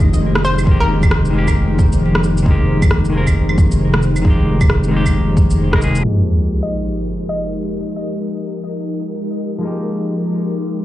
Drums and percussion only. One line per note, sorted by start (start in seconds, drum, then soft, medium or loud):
0.00 kick loud
0.00 shaker soft
0.14 shaker medium
0.35 cross-stick loud
0.45 shaker soft
0.58 claves soft
0.58 shaker medium
0.67 kick loud
1.03 kick loud
1.03 claves medium
1.03 shaker medium
1.11 cross-stick loud
1.25 shaker soft
1.48 kick medium
1.48 claves medium
1.48 shaker medium
1.79 kick loud
1.79 shaker soft
1.92 shaker medium
2.15 cross-stick loud
2.23 shaker soft
2.37 shaker medium
2.46 kick loud
2.82 kick medium
2.82 claves medium
2.82 shaker medium
2.91 cross-stick medium
3.05 shaker soft
3.27 kick medium
3.27 claves medium
3.27 shaker medium
3.49 claves medium
3.58 kick loud
3.58 shaker soft
3.71 shaker medium
3.94 cross-stick loud
4.02 shaker soft
4.16 claves soft
4.16 shaker medium
4.25 kick loud
4.61 kick loud
4.61 claves medium
4.61 shaker medium
4.70 cross-stick medium
4.84 shaker soft
5.06 kick medium
5.06 claves medium
5.06 shaker medium
5.37 kick loud
5.37 shaker soft
5.50 shaker medium
5.73 kick medium
5.73 cross-stick loud
5.82 shaker soft
5.95 shaker medium